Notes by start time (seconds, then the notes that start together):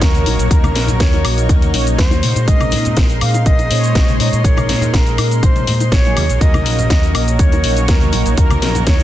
Already playing: F#3 A#3 C#4 D#4 F#4 C#5, sub drop
0.01 D#2 A#4, kick, snare, closed hi-hat, cabasa, shaker
0.15 closed hi-hat, high conga, cabasa, shaker
0.26 A#1, open hi-hat, high bongo, cabasa
0.39 A#1, closed hi-hat, shaker
0.50 D#2 F#3 A#3 C#4 D#4 A#4, kick, closed hi-hat, high bongo, cabasa, shaker
0.64 closed hi-hat, high conga, cabasa, high woodblock, shaker
0.75 A#1, snare, open hi-hat, cabasa
0.88 closed hi-hat, high bongo, low conga, cabasa, shaker
1.00 D#2 C#5, kick, snare, closed hi-hat, cabasa, shaker
1.13 closed hi-hat, high bongo, cabasa, shaker
1.25 A#1, open hi-hat, cabasa, high woodblock
1.38 closed hi-hat, cabasa, shaker
1.49 D#2, kick, closed hi-hat, high bongo, cabasa, shaker
1.62 closed hi-hat, high conga, cabasa, shaker
1.73 A#1 F#3 A#3 C#4 D#4 C#5, open hi-hat, high bongo, cabasa
1.87 closed hi-hat, cabasa, shaker
1.98 D#2 C5, kick, snare, closed hi-hat, cabasa, shaker
2.11 closed hi-hat, high bongo, cabasa, shaker
2.23 A#2 G#3 C6, open hi-hat, high conga, cabasa
2.36 A#2, closed hi-hat, high bongo, cabasa, shaker
2.46 A#1 G#3 C4 C#4 D#4 A#4 D#5, kick, closed hi-hat, cabasa, shaker
2.60 closed hi-hat, high conga, cabasa, high woodblock, shaker
2.71 A#2, open hi-hat, high bongo, cabasa
2.85 closed hi-hat, low conga, cabasa, shaker
2.97 A#1, kick, snare, closed hi-hat, high bongo, cabasa, shaker
3.10 closed hi-hat, cabasa, shaker
3.21 A#2 F5, open hi-hat, cabasa, high woodblock
3.34 closed hi-hat, high bongo, cabasa, shaker
3.46 A#1 D#5, kick, closed hi-hat, cabasa, shaker
3.58 closed hi-hat, high bongo, cabasa, shaker
3.70 A#2 G#3 C#4 D#4 C5 C#5, open hi-hat, cabasa
3.84 closed hi-hat, cabasa, shaker
3.95 A#1, kick, snare, closed hi-hat, high bongo, cabasa, shaker
4.08 closed hi-hat, high conga, cabasa, shaker
4.20 A#2 D#5, open hi-hat, high bongo, cabasa
4.33 A#2, closed hi-hat, cabasa, shaker
4.43 A#1 G#3 A#3 C#4 D#4 A#4 C#5, kick, closed hi-hat, cabasa, shaker
4.57 closed hi-hat, high bongo, high conga, cabasa, high woodblock, shaker
4.69 A#2, snare, open hi-hat, cabasa
4.81 closed hi-hat, high bongo, low conga, cabasa, shaker
4.93 A#1 A#4, kick, snare, closed hi-hat, cabasa, shaker
5.06 closed hi-hat, cabasa, shaker
5.18 A#2, open hi-hat, high bongo, cabasa, high woodblock
5.31 closed hi-hat, cabasa, shaker
5.43 A#1 C5, kick, closed hi-hat, high bongo, cabasa, shaker
5.56 closed hi-hat, high conga, cabasa, shaker
5.67 A#2, open hi-hat, low conga, cabasa
5.80 closed hi-hat, high bongo, cabasa, shaker
5.92 A#1 C#5, kick, snare, closed hi-hat, cabasa, shaker
6.05 F#3 A#3 C#4 D#4 G#4, closed hi-hat, high bongo, cabasa, shaker
6.16 D#2 A#3 D#4 F#4 C#5, open hi-hat, high conga, cabasa, high woodblock
6.29 A#1, closed hi-hat, cabasa, shaker
6.40 D#2 F#3 A#3 C#4 D#4 A#4 D#5, kick, closed hi-hat, cabasa, shaker
6.54 closed hi-hat, high bongo, high conga, cabasa, high woodblock, shaker
6.65 A#1, open hi-hat, cabasa
6.78 closed hi-hat, low conga, cabasa, shaker
6.90 D#2, kick, snare, closed hi-hat, high bongo, cabasa, shaker
7.03 closed hi-hat, cabasa, shaker
7.14 A#1 D#5, open hi-hat, high bongo, cabasa, high woodblock
7.28 closed hi-hat, shaker
7.39 D#2 C#5, kick, closed hi-hat, cabasa, shaker
7.52 closed hi-hat, high bongo, cabasa, shaker
7.63 A#1 F#3 A#3 C#4 D#4 C#5, open hi-hat, cabasa
7.77 closed hi-hat, high bongo, cabasa, shaker
7.88 D#2 A#4, kick, snare, closed hi-hat, cabasa, shaker
8.01 closed hi-hat, high conga, cabasa, shaker
8.12 A#1, open hi-hat, high bongo, cabasa
8.26 A#1, closed hi-hat, shaker
8.37 D#2 F#3 A#3 C#4 D#4 A#4, kick, closed hi-hat, high bongo, cabasa, shaker
8.50 closed hi-hat, high conga, cabasa, high woodblock, shaker
8.62 A#1, snare, open hi-hat, cabasa
8.75 closed hi-hat, high bongo, low conga, cabasa, shaker
8.87 D#2 C#5, kick, snare, closed hi-hat, cabasa, shaker
8.99 closed hi-hat, high bongo, cabasa, shaker